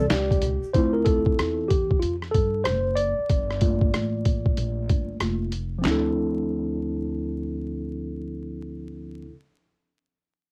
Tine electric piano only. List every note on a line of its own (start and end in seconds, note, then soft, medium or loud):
0.73 1.66 C4 soft
0.73 1.67 E4 medium
0.73 1.66 F4 medium
0.73 0.93 C5 medium
0.93 1.06 A#4 medium
1.05 1.71 A4 medium
1.68 1.99 G4 medium
1.99 2.14 F4 medium
2.31 2.62 A4 medium
2.64 2.98 C5 medium
2.95 5.16 D5 medium
3.61 5.20 A3 medium
3.61 5.20 A#3 soft
3.61 5.20 F4 medium
5.21 5.50 A3 soft
5.21 5.50 A#3 soft
5.21 5.50 F4 soft
5.79 9.22 F3 medium
5.79 9.25 C4 medium
5.85 9.28 D4 medium
5.85 9.31 E4 medium
5.91 9.34 A4 medium